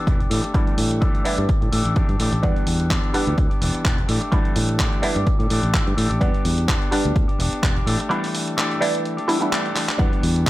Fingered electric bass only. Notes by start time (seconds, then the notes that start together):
0.07 E1
0.30 A2
0.78 A2
1.25 muted fingered electric bass stroke
1.38 G2
1.62 A2
1.72 A2
1.85 A1
2.09 G2
2.20 A2
2.32 A1
2.43 E2
2.67 E2
3.14 muted fingered electric bass stroke
3.27 D2
3.38 D2
3.62 E1
3.75 muted fingered electric bass stroke
3.85 E1
4.09 A2
4.56 A2
5.03 muted fingered electric bass stroke
5.16 G2
5.40 A2
5.50 A2
5.63 A1
5.87 G2
5.97 A2
6.10 A1
6.21 E2
6.45 E2
6.92 muted fingered electric bass stroke
7.05 D2
7.16 D2
7.39 E1
7.63 E1
7.87 A2
9.99 E2
10.23 E2